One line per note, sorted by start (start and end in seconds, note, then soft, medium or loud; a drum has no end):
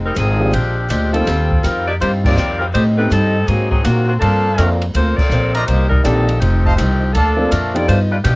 0.00 0.16 F1 medium
0.05 0.16 G3 medium
0.05 0.16 C4 medium
0.05 0.15 D#4 medium
0.05 0.16 A#4 medium
0.15 0.52 G#1 medium
0.15 0.40 F2 medium
0.15 0.41 D#3 medium
0.15 0.51 F3 medium
0.15 0.41 G#3 medium
0.15 0.42 C4 medium
0.15 0.51 C4 medium
0.15 0.51 D#4 medium
0.15 0.51 G#4 loud
0.15 kick soft
0.15 hi-hat pedal soft
0.15 ride medium
0.39 0.52 F3 medium
0.39 0.52 G#3 medium
0.39 0.52 C4 medium
0.39 0.52 D4 medium
0.39 0.52 G4 medium
0.51 0.89 A#1 medium
0.51 0.77 A#2 soft
0.51 0.88 F3 medium
0.51 0.78 G#3 soft
0.51 0.87 C4 medium
0.51 0.78 D4 soft
0.51 0.87 D4 medium
0.51 0.87 G4 medium
0.51 0.78 G4 medium
0.51 kick soft
0.51 ride medium
0.89 1.26 D2 medium
0.89 1.14 A#2 medium
0.89 1.12 F3 medium
0.89 1.14 G#3 medium
0.89 1.12 C4 medium
0.89 1.12 D4 medium
0.89 1.15 D4 medium
0.89 1.12 G4 medium
0.89 1.15 G4 medium
0.89 kick soft
0.89 hi-hat pedal medium
0.89 ride medium
1.12 1.25 F3 medium
1.12 1.60 G3 medium
1.12 1.25 A#3 medium
1.12 1.25 C4 medium
1.12 1.60 C4 medium
1.12 1.25 D#4 medium
1.12 1.60 F4 medium
1.12 1.60 A4 medium
1.12 1.25 A4 medium
1.12 ride soft
1.25 1.63 D#2 medium
1.25 1.51 D#3 soft
1.25 1.52 G3 soft
1.25 1.52 C4 medium
1.25 1.52 F4 soft
1.25 kick soft
1.25 snare soft
1.25 ride medium
1.51 kick medium
1.63 1.99 F2 medium
1.63 1.88 D#3 medium
1.63 1.87 G3 medium
1.63 1.88 G3 medium
1.63 1.87 C4 medium
1.63 1.89 C4 medium
1.63 1.87 F4 medium
1.63 1.89 F4 medium
1.63 1.87 A#4 medium
1.63 kick soft
1.63 hi-hat pedal soft
1.63 ride medium
1.88 1.94 A#3 medium
1.88 1.94 D#4 medium
1.88 1.94 G4 medium
1.88 1.94 D5 loud
2.00 2.35 G2 medium
2.00 2.25 D#3 soft
2.00 2.26 G3 soft
2.00 2.11 A#3 medium
2.00 2.26 C4 medium
2.00 2.12 F4 medium
2.00 2.27 F4 medium
2.00 2.12 G4 medium
2.00 2.12 C5 loud
2.00 kick soft
2.00 ride medium
2.24 2.36 F3 medium
2.24 2.36 A#3 medium
2.24 2.36 C4 medium
2.24 2.59 C4 medium
2.24 2.36 D#4 medium
2.24 2.58 G4 medium
2.24 2.36 G4 medium
2.24 2.58 A#4 medium
2.24 2.59 D5 loud
2.24 kick medium
2.24 crash medium
2.36 2.72 F2 medium
2.36 2.61 D#3 medium
2.36 2.62 G3 medium
2.36 2.62 C4 medium
2.36 2.62 F4 medium
2.36 hi-hat pedal medium
2.59 2.66 G3 medium
2.59 2.66 C4 medium
2.59 2.66 F4 medium
2.59 2.66 A#4 medium
2.72 2.98 A2 soft
2.72 3.10 A2 medium
2.72 2.99 G3 soft
2.72 2.84 A3 medium
2.72 2.99 C4 soft
2.72 2.85 D#4 medium
2.72 3.00 D#4 soft
2.72 2.85 G4 medium
2.72 2.84 C5 loud
2.72 kick soft
2.72 ride medium
2.96 3.09 G3 medium
2.96 3.09 A3 medium
2.96 3.09 B3 medium
2.96 3.09 C4 medium
2.96 3.10 C4 medium
2.96 3.09 D#4 medium
2.96 3.10 D#4 medium
2.96 3.10 G4 medium
2.96 3.10 B4 medium
3.10 3.46 G2 medium
3.10 3.35 A2 medium
3.10 3.35 G3 medium
3.10 3.45 G3 medium
3.10 3.45 C4 medium
3.10 3.36 C4 medium
3.10 3.45 D#4 medium
3.10 3.36 D#4 medium
3.10 3.45 A4 medium
3.10 kick soft
3.10 hi-hat pedal soft
3.10 ride medium
3.47 3.72 G#2 soft
3.47 3.83 G#2 medium
3.47 3.70 F#3 medium
3.47 3.73 F#3 soft
3.47 3.73 A#3 medium
3.47 3.70 C4 medium
3.47 3.73 C4 soft
3.47 3.70 D#4 medium
3.47 3.70 G#4 medium
3.47 kick soft
3.47 ride medium
3.71 3.83 F#3 medium
3.71 3.83 C4 medium
3.71 3.83 D#4 medium
3.71 3.83 G#4 medium
3.71 kick medium
3.84 4.09 G#2 medium
3.84 4.20 A#2 medium
3.84 4.07 D#3 medium
3.84 4.10 F#3 medium
3.84 4.06 A#3 medium
3.84 4.10 A#3 medium
3.84 4.07 C4 medium
3.84 4.10 C4 medium
3.84 4.06 F#4 medium
3.84 hi-hat pedal medium
3.84 ride medium
4.07 4.14 D#3 medium
4.07 4.14 A#3 medium
4.07 4.14 C4 medium
4.07 4.13 F#4 medium
4.20 4.46 G2 soft
4.20 4.57 G2 medium
4.20 4.55 F3 medium
4.20 4.47 F3 soft
4.20 4.55 A#3 medium
4.20 4.47 A#3 soft
4.20 4.55 D4 medium
4.20 4.54 A4 loud
4.20 4.77 A4 medium
4.20 4.77 C5 medium
4.20 4.76 F5 medium
4.20 4.77 A5 medium
4.20 kick soft
4.20 ride medium
4.24 4.47 C4 medium
4.57 4.94 F2 medium
4.57 4.83 G2 medium
4.57 4.68 F3 medium
4.57 4.79 F3 medium
4.57 4.84 F3 medium
4.57 4.68 A3 medium
4.57 4.79 A#3 medium
4.57 4.84 A#3 medium
4.57 4.79 C4 medium
4.57 4.84 C4 medium
4.57 4.69 D4 medium
4.57 4.80 D4 medium
4.57 4.79 A4 medium
4.57 4.68 A#4 medium
4.57 kick soft
4.57 hi-hat pedal soft
4.57 ride medium
4.82 ride soft
4.94 5.16 D2 medium
4.94 5.19 G2 soft
4.94 5.20 F3 medium
4.94 5.17 A#3 medium
4.94 5.20 A#3 medium
4.94 5.16 F4 medium
4.94 5.16 A4 medium
4.94 5.17 C5 medium
4.94 kick soft
4.94 ride medium
4.98 5.21 C4 medium
5.17 5.55 A#3 medium
5.17 5.54 F4 medium
5.17 5.54 A4 medium
5.17 5.54 D5 loud
5.17 muted upright bass stroke soft
5.17 kick medium
5.17 crash medium
5.29 5.66 A#1 medium
5.29 5.56 G2 medium
5.29 5.56 F3 medium
5.29 5.56 A#3 medium
5.29 5.57 C4 medium
5.29 hi-hat pedal medium
5.54 5.67 F3 medium
5.54 5.67 A3 medium
5.54 5.66 D4 medium
5.54 5.67 A#4 medium
5.54 5.63 C5 medium
5.54 5.64 D5 medium
5.54 5.64 D#5 medium
5.54 5.64 A#5 loud
5.54 ride soft
5.66 6.04 C2 medium
5.66 5.93 C3 soft
5.66 5.93 D#3 soft
5.66 5.91 A#3 medium
5.66 5.93 A#3 medium
5.66 5.88 D#4 medium
5.66 5.91 G4 medium
5.66 5.91 C5 medium
5.66 kick soft
5.66 ride medium
5.71 5.94 D4 soft
5.90 6.03 G3 medium
5.90 6.02 D4 medium
5.90 6.02 D#4 medium
5.90 6.03 A#4 medium
5.90 kick medium
6.03 6.40 A#1 medium
6.03 6.29 C3 medium
6.03 6.25 D#3 medium
6.03 6.30 D#3 medium
6.03 6.38 G3 medium
6.03 6.25 A#3 medium
6.03 6.30 A#3 medium
6.03 6.26 C4 medium
6.03 6.38 D4 medium
6.03 6.26 D4 medium
6.03 6.30 D4 medium
6.03 6.38 D#4 medium
6.03 6.26 G4 medium
6.03 6.38 A4 medium
6.03 hi-hat pedal medium
6.03 ride medium
6.29 ride soft
6.39 6.77 F1 medium
6.39 6.66 F2 soft
6.39 6.66 D#3 medium
6.39 6.74 F3 medium
6.39 6.67 A3 soft
6.39 6.74 C4 medium
6.39 6.75 D#4 medium
6.39 6.74 G4 medium
6.39 kick soft
6.39 ride medium
6.44 6.67 C4 medium
6.65 6.74 C5 medium
6.65 6.74 D#5 medium
6.65 6.74 F5 medium
6.65 6.74 A5 medium
6.65 kick medium
6.75 7.14 C2 medium
6.75 7.02 F2 medium
6.75 7.03 D#3 medium
6.75 7.11 F3 medium
6.75 7.03 A3 medium
6.75 7.11 C4 medium
6.75 7.03 C4 medium
6.75 7.11 D#4 medium
6.75 7.11 G4 medium
6.75 hi-hat pedal medium
6.75 ride medium
7.13 7.51 D2 medium
7.13 7.39 A#2 soft
7.13 7.49 F3 medium
7.13 7.40 F3 soft
7.13 7.40 A3 soft
7.13 7.51 A#3 medium
7.13 7.50 D4 medium
7.13 7.41 D4 soft
7.13 7.50 A4 loud
7.13 7.70 A4 medium
7.13 7.70 D5 medium
7.13 7.70 F5 medium
7.13 7.70 A5 medium
7.13 kick soft
7.13 ride medium
7.37 7.49 F3 medium
7.37 7.49 A#3 medium
7.37 7.49 C4 medium
7.37 7.50 D4 medium
7.37 7.50 A4 medium
7.50 7.87 F2 medium
7.50 7.76 A#2 medium
7.50 7.74 F3 medium
7.50 7.76 F3 medium
7.50 7.74 A3 medium
7.50 7.76 A3 medium
7.50 7.75 D4 medium
7.50 7.77 D4 medium
7.50 7.74 A#4 medium
7.50 kick soft
7.50 hi-hat pedal medium
7.50 ride medium
7.74 7.86 F3 medium
7.74 7.88 A#3 medium
7.74 7.86 B3 medium
7.74 7.87 D4 medium
7.74 7.87 D#4 medium
7.74 7.87 F4 medium
7.74 7.87 G4 medium
7.74 7.88 A4 medium
7.74 7.89 D5 loud
7.74 ride soft
7.88 8.13 G2 soft
7.88 8.24 G2 medium
7.88 8.14 F3 soft
7.88 7.99 A3 medium
7.88 8.14 B3 medium
7.88 7.99 D4 medium
7.88 8.15 D#4 soft
7.88 7.99 F4 medium
7.88 7.99 C5 medium
7.88 kick soft
7.88 ride medium
8.11 8.17 G3 medium
8.11 8.17 D4 medium
8.11 8.17 F4 medium
8.11 8.17 B4 medium
8.24 8.36 G2 medium
8.24 8.36 B2 medium
8.24 8.35 F3 medium
8.24 8.36 F3 medium
8.24 8.35 B3 medium
8.24 8.36 B3 medium
8.24 8.36 D4 medium
8.24 8.36 D#4 medium
8.24 8.35 G4 medium
8.24 kick soft
8.24 hi-hat pedal medium
8.24 ride medium